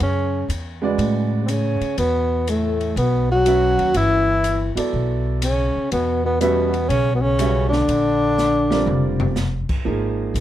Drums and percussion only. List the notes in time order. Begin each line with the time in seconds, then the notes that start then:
0.00 ride
0.50 hi-hat pedal, ride
0.99 ride
1.48 hi-hat pedal, ride
1.81 ride
1.98 ride
2.47 hi-hat pedal, ride
2.81 ride
2.97 ride
3.46 hi-hat pedal, ride
3.79 ride
3.94 ride
4.44 hi-hat pedal, ride
4.77 ride
5.42 hi-hat pedal, ride
5.92 ride
6.41 hi-hat pedal, ride
6.74 ride
6.90 ride
7.39 hi-hat pedal, ride
7.72 snare
7.89 ride
8.38 snare, hi-hat pedal
8.71 snare
8.87 mid tom
9.20 floor tom
9.36 snare, hi-hat pedal
9.69 kick, crash
10.35 hi-hat pedal, ride